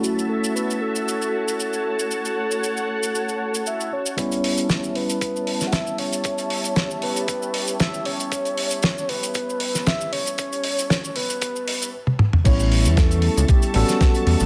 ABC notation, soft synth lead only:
X:1
M:4/4
L:1/16
Q:"Swing 16ths" 1/4=116
K:Amix
V:1 name="Soft synth lead"
F2 A2 B2 A8- A2- | A12 e2 c2- | c6 B4- B3/2 f/2 e2 c2- | c6 B6 e2 c2- |
c6 B6 e2 c2- | c6 B6 z4 | c4 A4 G2 F6 |]